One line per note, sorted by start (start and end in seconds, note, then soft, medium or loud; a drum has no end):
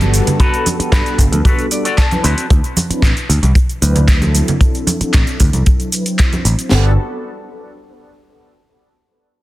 0.00 0.19 G1 medium
0.00 0.76 G3 medium
0.00 0.76 B3 medium
0.00 0.76 D4 medium
0.00 0.77 F#4 medium
0.00 0.77 A4 medium
0.00 closed hi-hat soft
0.00 high conga medium
0.00 cabasa soft
0.13 muted clean electric guitar stroke soft
0.13 open hi-hat loud
0.13 cabasa medium
0.13 cabasa loud
0.27 closed hi-hat medium
0.27 low conga medium
0.27 cabasa soft
0.39 0.66 F#4 loud
0.39 0.66 A4 loud
0.39 0.66 B4 loud
0.39 kick loud
0.39 closed hi-hat medium
0.39 cabasa soft
0.54 closed hi-hat soft
0.54 cabasa soft
0.66 open hi-hat loud
0.66 high conga medium
0.66 cabasa medium
0.78 1.68 G3 medium
0.78 1.68 B3 medium
0.78 1.68 D4 medium
0.78 1.68 F#4 medium
0.78 1.69 A4 loud
0.78 muted picked electric bass stroke soft
0.78 closed hi-hat medium
0.78 cabasa soft
0.92 1.01 G2 loud
0.92 1.19 F#4 medium
0.92 1.19 A4 medium
0.92 1.19 B4 medium
0.92 kick loud
0.92 clap loud
0.92 closed hi-hat medium
0.92 cabasa soft
0.92 cabasa medium
1.06 closed hi-hat soft
1.06 cabasa soft
1.18 1.27 G1 medium
1.18 kick medium
1.18 open hi-hat loud
1.18 low conga medium
1.18 cabasa medium
1.32 1.40 D2 medium
1.32 closed hi-hat soft
1.32 high conga medium
1.32 cabasa soft
1.45 1.65 F#4 medium
1.45 1.65 A4 medium
1.45 1.65 B4 loud
1.45 kick loud
1.45 closed hi-hat medium
1.45 cabasa soft
1.45 cabasa medium
1.59 closed hi-hat soft
1.59 cabasa soft
1.71 1.85 G3 medium
1.71 1.85 B3 medium
1.71 1.85 D4 medium
1.71 1.85 F#4 medium
1.71 1.85 A4 medium
1.71 1.84 D5 medium
1.71 open hi-hat loud
1.71 cabasa medium
1.85 2.04 F#4 medium
1.85 2.05 A4 medium
1.85 2.05 D5 loud
1.85 1.97 F#5 medium
1.85 closed hi-hat medium
1.85 cabasa soft
1.98 2.47 A5 medium
1.98 kick loud
1.98 clap loud
1.98 closed hi-hat medium
1.98 cabasa soft
1.98 cabasa medium
2.11 2.32 F#3 medium
2.11 2.32 C4 medium
2.11 2.33 D4 medium
2.11 2.33 E4 medium
2.11 2.33 B4 loud
2.11 closed hi-hat soft
2.11 high conga medium
2.11 cabasa soft
2.24 2.33 D2 medium
2.24 2.45 C4 loud
2.24 2.45 E4 medium
2.24 2.45 F#4 medium
2.24 2.45 B4 medium
2.24 open hi-hat loud
2.24 cabasa medium
2.38 closed hi-hat soft
2.38 cabasa soft
2.50 2.59 D2 loud
2.50 kick loud
2.50 closed hi-hat medium
2.50 cabasa soft
2.64 closed hi-hat soft
2.64 cabasa soft
2.77 open hi-hat loud
2.77 high conga loud
2.77 cabasa medium
2.90 3.11 F#3 medium
2.90 3.11 C4 medium
2.90 3.12 D4 medium
2.90 3.12 E4 medium
2.90 3.12 B4 medium
2.90 muted picked electric bass stroke soft
2.90 closed hi-hat soft
2.90 cabasa soft
3.02 3.11 A1 loud
3.02 kick loud
3.02 clap loud
3.02 closed hi-hat soft
3.02 cabasa soft
3.17 closed hi-hat soft
3.17 cabasa soft
3.29 3.38 D2 medium
3.29 open hi-hat loud
3.29 low conga medium
3.29 cabasa medium
3.43 3.51 C2 medium
3.43 closed hi-hat soft
3.43 high conga medium
3.43 cabasa soft
3.55 kick loud
3.55 closed hi-hat medium
3.55 cabasa soft
3.69 closed hi-hat soft
3.69 cabasa soft
3.81 4.40 D2 medium
3.81 4.18 F#3 loud
3.81 4.18 C4 medium
3.81 4.18 D4 medium
3.81 4.19 E4 medium
3.81 4.19 B4 loud
3.81 open hi-hat loud
3.81 cabasa medium
3.96 closed hi-hat medium
3.96 low conga medium
3.96 cabasa soft
4.08 kick loud
4.08 clap loud
4.08 closed hi-hat soft
4.08 cabasa medium
4.08 cabasa soft
4.21 4.97 F#3 medium
4.21 4.97 C4 medium
4.21 4.98 D4 medium
4.21 4.98 E4 medium
4.21 4.98 A4 medium
4.21 closed hi-hat soft
4.21 high conga medium
4.21 cabasa soft
4.35 open hi-hat loud
4.35 cabasa medium
4.48 closed hi-hat soft
4.48 low conga loud
4.48 cabasa soft
4.61 kick loud
4.61 closed hi-hat soft
4.61 cabasa soft
4.74 closed hi-hat soft
4.74 cabasa soft
4.87 open hi-hat loud
4.87 high conga loud
4.87 cabasa medium
5.00 5.89 F#3 medium
5.00 5.89 C4 medium
5.00 5.89 D4 medium
5.00 5.90 E4 medium
5.00 5.90 A4 loud
5.00 muted picked electric bass stroke soft
5.00 closed hi-hat soft
5.00 cabasa soft
5.14 5.23 A1 loud
5.14 kick loud
5.14 clap loud
5.14 closed hi-hat soft
5.14 cabasa soft
5.27 closed hi-hat soft
5.27 cabasa soft
5.40 5.49 D2 medium
5.40 kick medium
5.40 open hi-hat loud
5.40 low conga medium
5.40 cabasa medium
5.53 5.62 C2 medium
5.53 closed hi-hat soft
5.53 high conga medium
5.53 cabasa soft
5.66 kick loud
5.66 closed hi-hat soft
5.66 cabasa soft
5.80 closed hi-hat soft
5.80 cabasa soft
5.92 6.04 F#3 medium
5.92 6.04 C4 medium
5.92 6.04 D4 medium
5.92 6.04 E4 medium
5.92 6.04 B4 medium
5.92 open hi-hat loud
5.92 cabasa medium
6.05 6.69 F#3 medium
6.05 6.70 C4 medium
6.05 6.70 D4 medium
6.05 6.70 E4 medium
6.05 6.71 C5 medium
6.05 closed hi-hat soft
6.05 cabasa soft
6.19 kick loud
6.19 clap loud
6.19 closed hi-hat soft
6.19 cabasa soft
6.19 cabasa medium
6.33 closed hi-hat soft
6.33 high conga medium
6.33 cabasa soft
6.45 6.54 A1 medium
6.45 open hi-hat loud
6.45 cabasa medium
6.59 closed hi-hat soft
6.59 cabasa soft
6.70 6.96 G1 medium
6.70 6.90 G3 medium
6.70 6.91 B3 medium
6.70 6.91 D4 medium
6.70 6.92 F#4 medium
6.70 6.92 A4 medium
6.70 snare loud
6.70 china medium